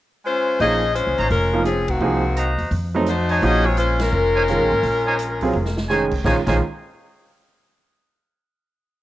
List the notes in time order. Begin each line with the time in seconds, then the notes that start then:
0.25 G#3 C#4 F4 C5
0.60 A#1 F3 A#3 C#4 D#4 G#4 C5 C#5 D#5 G#5, kick, open hi-hat
0.94 G#3 C#4 F4 C5, closed hi-hat
1.07 C2
1.18 A1 D#4 C5 C#5 A#5, open hi-hat
1.30 F1 G#3 C#4 F4 A#4, kick, open hi-hat
1.53 F3 A#3 D#4 F4
1.65 F3 C4 C#4 G#4, cross-stick, closed hi-hat
1.88 D#3 A#3 C4 F#4, kick, ride
2.01 C2 F3 A#3 D#4 G#4
2.36 F#4 C5 D#5 A#5, closed hi-hat
2.58 E2, open hi-hat
2.71 F2, kick, open hi-hat
2.95 F#3 A3 C4 D#4
3.06 A3 D#4 F#4 C5, cross-stick, closed hi-hat
3.29 D#4 C5 C#5 G#5, open hi-hat
3.42 A#1 F3 A#3 C#4 D#4 F#4 G#4 C5 D#5, kick, open hi-hat
3.66 G#3 C4 F4 C#5
3.77 G#3 C#4 F4 C5, closed hi-hat
3.99 G#3 C#4 F4 A#4, snare, ride
4.13 F1
4.35 D#4 C5 C#5 G#5
4.48 D#3 G#3 C#4 F4, cross-stick, closed hi-hat
4.60 A#1
4.72 G#1
4.83 A#1, kick, open hi-hat
5.06 D#4 C5 C#5 G#5
5.19 closed hi-hat
5.41 F#3 C4 F4 G#4, kick, open hi-hat
5.53 F1
5.66 snare
5.77 snare
5.89 D#3 G#3 C#4 D#4 G#4 C5 C#5 G#5, snare
6.11 kick, crash
6.24 A#1 D#3 G#3 C#4 D#4 F4 C5 C#5 G#5, kick, snare
6.47 A#1 D#3 G#3 C#4 D#4 F4 C5 C#5 G#5, kick, snare, crash